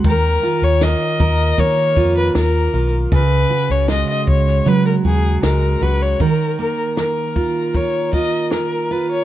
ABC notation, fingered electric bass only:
X:1
M:4/4
L:1/16
Q:1/4=78
K:Ebm
V:1 name="Fingered electric bass" clef=bass
E,,2 z E,,2 z E,,2 E,2 F,,2 E,,2 C,,2 | D,,2 z D,,2 z D,,2 D,2 E,,2 D,,2 D,,2 | z16 |]